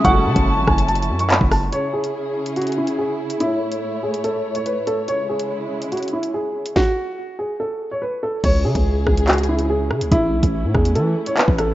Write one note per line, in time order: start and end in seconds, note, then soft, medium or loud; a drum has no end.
0.00 1.66 G#3 medium
0.00 1.69 C#4 medium
0.00 1.69 E4 medium
0.04 0.27 F#1 loud
0.04 1.71 F#3 medium
0.04 1.69 A3 medium
0.04 0.64 F#5 loud
0.04 1.71 A5 medium
0.04 1.68 C#6 loud
0.04 kick loud
0.04 closed hi-hat medium
0.10 1.72 F#4 medium
0.26 0.35 C#3 loud
0.36 0.59 F#1 loud
0.36 kick medium
0.36 closed hi-hat medium
0.57 0.67 G#1 loud
0.67 1.11 F#1 loud
0.67 0.84 G#5 medium
0.67 kick loud
0.67 cross-stick loud
0.78 closed hi-hat medium
0.88 1.18 A5 medium
0.88 closed hi-hat medium
0.95 closed hi-hat medium
1.02 closed hi-hat medium
1.09 1.39 F#2 loud
1.19 1.28 C#6 medium
1.19 closed hi-hat medium
1.30 1.47 B5 medium
1.30 clap loud
1.30 closed hi-hat medium
1.41 1.71 F#1 loud
1.41 kick loud
1.51 1.68 A5 medium
1.51 cross-stick loud
1.51 open hi-hat medium
1.72 3.38 C#3 medium
1.72 3.38 C#4 medium
1.72 5.05 E4 medium
1.72 3.38 G#4 medium
1.72 1.89 C#5 medium
1.72 closed hi-hat medium
1.93 2.53 G#4 medium
2.04 closed hi-hat medium
2.46 closed hi-hat medium
2.56 2.73 F#4 medium
2.56 closed hi-hat medium
2.62 closed hi-hat medium
2.67 closed hi-hat medium
2.72 closed hi-hat medium
2.78 2.94 E4 medium
2.87 closed hi-hat medium
2.98 3.38 G#4 medium
3.30 closed hi-hat medium
3.40 5.06 A2 medium
3.40 5.06 A3 medium
3.40 3.99 E4 medium
3.40 6.73 C#5 medium
3.40 closed hi-hat medium
3.72 closed hi-hat medium
4.03 4.20 G#4 medium
4.14 closed hi-hat medium
4.24 4.54 A4 medium
4.24 closed hi-hat medium
4.55 4.64 C#5 medium
4.55 closed hi-hat medium
4.66 4.83 B4 medium
4.66 closed hi-hat medium
4.87 5.04 A4 medium
4.87 closed hi-hat medium
5.08 6.74 C#3 medium
5.08 6.74 G#3 medium
5.08 6.74 E4 medium
5.08 5.25 C#5 medium
5.08 closed hi-hat medium
5.29 5.88 G#4 medium
5.39 closed hi-hat medium
5.82 closed hi-hat medium
5.92 6.08 F#4 medium
5.92 closed hi-hat medium
5.97 closed hi-hat medium
6.03 closed hi-hat medium
6.08 closed hi-hat medium
6.13 6.30 E4 medium
6.23 closed hi-hat medium
6.34 6.73 G#4 medium
6.66 closed hi-hat medium
6.76 7.35 F#4 loud
6.76 kick loud
6.76 snare medium
7.39 7.55 G#4 medium
7.60 7.89 A4 medium
7.91 8.00 C#5 medium
8.02 8.18 B4 medium
8.23 8.39 A4 medium
8.44 8.66 C#2 loud
8.44 10.10 C#3 medium
8.44 11.74 C#4 medium
8.44 11.74 E4 medium
8.44 10.10 G#4 medium
8.44 8.61 C#5 loud
8.44 kick loud
8.44 closed hi-hat medium
8.44 crash medium
8.65 8.75 C#3 loud
8.65 9.24 G#4 medium
8.75 9.05 C#2 loud
8.75 kick medium
8.75 closed hi-hat medium
9.07 9.92 C#2 loud
9.07 kick medium
9.07 cross-stick medium
9.17 closed hi-hat medium
9.28 9.44 F#4 medium
9.28 clap loud
9.28 closed hi-hat medium
9.33 closed hi-hat medium
9.38 closed hi-hat medium
9.43 closed hi-hat medium
9.49 9.65 E4 medium
9.59 closed hi-hat medium
9.70 10.09 G#4 medium
9.91 10.03 C#3 medium
9.91 cross-stick loud
10.01 10.11 C#2 loud
10.01 closed hi-hat loud
10.11 10.34 A1 loud
10.11 11.74 A3 medium
10.11 10.71 E4 loud
10.11 kick loud
10.11 closed hi-hat medium
10.33 10.43 B1 loud
10.43 10.66 A1 loud
10.43 kick medium
10.43 closed hi-hat medium
10.64 10.74 A2 loud
10.74 10.97 E2 loud
10.74 10.91 G#4 medium
10.74 kick medium
10.74 cross-stick medium
10.85 closed hi-hat medium
10.95 11.15 E3 loud
10.95 11.25 A4 medium
10.95 closed hi-hat medium
11.26 11.35 C#5 medium
11.26 closed hi-hat medium
11.37 11.54 B4 medium
11.37 clap loud
11.37 closed hi-hat medium
11.48 11.74 A1 loud
11.48 kick loud
11.58 11.74 A4 medium
11.58 cross-stick loud
11.58 closed hi-hat medium